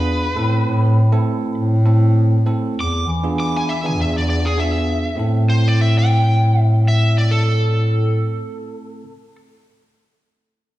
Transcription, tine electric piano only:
0.00 0.27 B3 medium
0.00 0.27 D4 medium
0.00 0.27 F4 medium
0.00 0.27 G#4 medium
0.36 0.98 A3 medium
0.36 0.98 C4 medium
0.36 0.98 E4 medium
0.36 0.98 A4 medium
1.12 1.74 A3 medium
1.12 1.74 C4 medium
1.12 1.75 E4 medium
1.12 1.75 A4 loud
1.86 2.37 A3 medium
1.86 2.37 C4 medium
1.86 2.37 E4 medium
1.86 2.37 A4 medium
2.46 2.77 A3 medium
2.46 2.77 C4 medium
2.46 2.77 E4 medium
2.46 2.77 A4 medium
3.24 3.72 B3 medium
3.24 3.72 D4 medium
3.24 3.72 F4 medium
3.24 3.72 G#4 medium
3.84 4.45 B3 medium
3.84 4.45 D4 medium
3.84 4.45 F4 medium
3.84 4.46 G#4 medium
4.58 5.08 B3 medium
4.58 5.08 D4 medium
4.58 5.08 F4 medium
4.58 5.08 G#4 medium
5.15 9.03 A3 medium
5.15 9.03 C4 medium
5.15 9.04 E4 medium
5.15 9.05 A4 medium

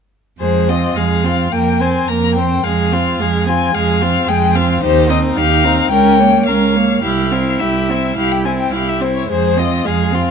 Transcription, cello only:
0.40 0.90 F2 soft
0.96 1.46 F2 soft
1.52 2.01 F2 soft
2.08 2.57 F2 soft
2.64 3.13 F2 soft
3.19 3.68 F2 soft
3.74 4.22 F2 soft
4.28 4.76 F2 soft
4.83 5.31 D#2 medium
5.37 5.85 D#2 medium
5.91 6.40 C#2 medium
6.47 6.96 C#2 soft
7.03 7.53 C2 soft
7.60 8.10 C2 soft
8.17 8.67 C2 soft
8.73 9.23 C2 soft
9.29 9.78 F2 soft
9.85 10.31 F2 soft

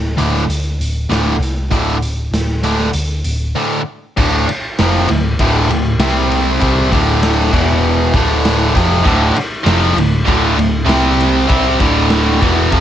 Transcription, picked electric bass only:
0.00 0.15 D1 medium
0.18 0.46 D1 medium
0.47 0.76 D2 medium
0.78 1.07 D1 medium
1.09 1.37 D1 medium
1.38 1.67 C2 medium
1.71 2.28 D1 medium
2.31 2.89 D1 medium
2.93 3.21 D2 medium
3.24 3.52 D1 medium
4.17 4.45 D1 medium
4.79 5.07 F1 medium
5.09 5.37 D1 medium
5.39 5.67 D1 medium
5.68 5.97 D1 medium
5.98 6.56 C2 medium
6.61 6.89 C2 loud
6.92 7.49 D1 loud
7.53 8.10 E1 loud
8.14 8.71 D1 medium
8.75 9.03 F1 medium
9.06 9.33 D1 loud
9.65 9.94 F1 medium
9.95 10.24 D1 medium
10.28 10.56 D1 medium
10.56 10.86 D1 medium
10.86 11.45 C2 loud
11.50 11.79 C2 medium
11.80 12.38 D1 loud
12.42 12.70 E1 medium
12.73 12.80 F1 loud

